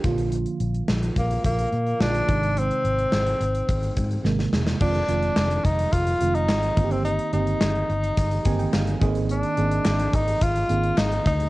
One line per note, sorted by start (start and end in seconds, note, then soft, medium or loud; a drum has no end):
0.00 0.94 D3 medium
0.00 0.17 D4 medium
0.00 0.17 G4 medium
0.00 closed hi-hat medium
0.04 0.45 A#1 loud
0.04 0.94 F3 medium
0.04 0.94 A#3 medium
0.04 0.94 F4 medium
0.04 kick loud
0.18 closed hi-hat soft
0.32 closed hi-hat medium
0.46 closed hi-hat soft
0.60 0.80 A#1 medium
0.60 closed hi-hat medium
0.74 closed hi-hat soft
0.88 1.09 A#1 medium
0.88 snare loud
1.03 closed hi-hat medium
1.16 1.37 A#1 medium
1.16 1.44 A#3 medium
1.16 kick medium
1.16 closed hi-hat medium
1.31 closed hi-hat soft
1.45 1.65 A#1 loud
1.45 2.03 A#3 medium
1.45 kick medium
1.45 closed hi-hat loud
1.59 closed hi-hat soft
1.72 1.93 A#2 medium
1.72 closed hi-hat medium
1.87 closed hi-hat soft
2.00 2.21 A#1 loud
2.00 2.28 D3 medium
2.00 2.28 F3 medium
2.00 2.28 A#3 medium
2.00 2.60 D4 loud
2.00 2.29 F4 medium
2.00 snare loud
2.15 closed hi-hat soft
2.28 2.69 G#1 loud
2.28 3.18 C3 medium
2.28 3.18 D#3 medium
2.28 3.18 G#3 medium
2.28 3.18 D#4 medium
2.28 kick loud
2.28 closed hi-hat medium
2.43 closed hi-hat soft
2.57 4.26 C4 medium
2.57 closed hi-hat medium
2.71 closed hi-hat soft
2.84 3.05 G#1 medium
2.84 closed hi-hat medium
2.98 closed hi-hat soft
3.12 3.33 G#1 medium
3.12 snare loud
3.27 closed hi-hat medium
3.40 3.61 G#1 medium
3.40 closed hi-hat medium
3.55 closed hi-hat medium
3.69 3.89 G#1 medium
3.69 kick medium
3.69 closed hi-hat medium
3.83 closed hi-hat soft
3.96 4.17 G#2 medium
3.96 kick medium
3.96 closed hi-hat medium
4.11 closed hi-hat soft
4.24 4.45 G#1 medium
4.24 4.63 C3 medium
4.24 4.63 D#3 medium
4.24 4.63 G#3 medium
4.24 4.63 A#3 medium
4.24 snare soft
4.39 snare medium
4.53 4.73 E1 medium
4.53 snare medium
4.67 snare medium
4.80 5.01 F1 loud
4.80 5.00 D#3 medium
4.80 5.00 G#3 medium
4.80 5.00 C4 medium
4.80 5.66 D4 medium
4.80 5.00 F4 medium
4.80 kick loud
4.80 crash medium
4.94 closed hi-hat soft
5.08 5.29 F1 medium
5.08 5.85 D#3 medium
5.08 5.85 G#3 medium
5.08 5.86 C4 medium
5.08 5.86 F4 medium
5.08 closed hi-hat medium
5.23 closed hi-hat soft
5.36 5.57 F1 medium
5.36 snare loud
5.36 clap medium
5.51 closed hi-hat medium
5.65 5.85 F1 medium
5.65 5.95 D#4 medium
5.65 kick medium
5.65 closed hi-hat medium
5.79 closed hi-hat medium
5.93 6.13 F1 medium
5.93 6.37 F4 loud
5.93 kick medium
5.93 closed hi-hat medium
6.07 closed hi-hat medium
6.21 6.49 F1 medium
6.21 6.75 D#3 medium
6.21 6.77 G#3 medium
6.21 6.76 C4 medium
6.21 6.76 F4 medium
6.21 closed hi-hat medium
6.35 6.93 D#4 medium
6.35 closed hi-hat soft
6.49 6.69 G#1 medium
6.49 snare loud
6.49 clap medium
6.63 closed hi-hat soft
6.76 7.17 G1 medium
6.76 7.22 D#3 medium
6.76 7.22 A#3 medium
6.76 7.22 C4 medium
6.76 6.84 F4 medium
6.76 kick loud
6.76 closed hi-hat medium
6.84 7.25 G4 medium
6.91 7.04 C4 medium
6.91 closed hi-hat soft
7.05 7.31 D#4 medium
7.05 closed hi-hat medium
7.19 closed hi-hat soft
7.33 7.53 G1 medium
7.33 8.10 D#3 medium
7.33 8.10 A#3 medium
7.33 8.10 C4 medium
7.33 8.97 D#4 medium
7.33 8.10 G4 medium
7.33 closed hi-hat medium
7.47 closed hi-hat soft
7.61 7.81 G1 loud
7.61 snare loud
7.61 clap medium
7.75 closed hi-hat medium
7.89 8.09 G1 loud
7.89 closed hi-hat medium
8.03 closed hi-hat medium
8.17 8.38 G1 medium
8.17 kick medium
8.17 closed hi-hat medium
8.31 closed hi-hat medium
8.45 8.66 G1 medium
8.45 9.00 D#3 medium
8.45 9.00 A#3 medium
8.45 9.00 C4 medium
8.45 9.02 G4 medium
8.45 8.58 G#5 medium
8.45 kick loud
8.45 closed hi-hat medium
8.59 8.72 G5 medium
8.59 closed hi-hat soft
8.73 8.94 G1 medium
8.73 9.00 F5 medium
8.73 snare loud
8.73 clap medium
8.87 closed hi-hat soft
9.01 9.42 G#1 medium
9.01 9.46 D#3 medium
9.01 9.46 A#3 medium
9.01 9.46 C4 medium
9.01 9.47 G#4 loud
9.01 9.28 D#5 medium
9.01 kick loud
9.01 closed hi-hat medium
9.15 closed hi-hat soft
9.29 10.17 D4 medium
9.29 closed hi-hat medium
9.43 closed hi-hat soft
9.57 9.78 G#1 medium
9.57 10.34 D#3 medium
9.57 10.34 A#3 medium
9.57 10.34 C4 medium
9.57 10.34 G#4 medium
9.57 closed hi-hat medium
9.71 closed hi-hat soft
9.85 10.06 G#1 loud
9.85 snare loud
9.85 clap medium
9.99 closed hi-hat medium
10.13 10.34 G#1 medium
10.13 10.44 D#4 medium
10.13 kick medium
10.13 closed hi-hat medium
10.28 closed hi-hat medium
10.41 10.62 G#1 loud
10.41 11.00 F4 loud
10.41 kick medium
10.41 closed hi-hat medium
10.56 closed hi-hat medium
10.69 10.90 G#1 medium
10.69 11.27 D#3 medium
10.69 11.27 A#3 medium
10.69 11.27 C4 medium
10.69 11.27 G#4 medium
10.69 closed hi-hat medium
10.84 closed hi-hat soft
10.98 11.18 G#1 medium
10.98 11.26 D#4 loud
10.98 snare loud
10.98 clap medium
11.12 closed hi-hat soft
11.26 11.46 D2 medium
11.26 11.49 D#4 loud
11.26 kick medium
11.26 closed hi-hat medium
11.40 closed hi-hat soft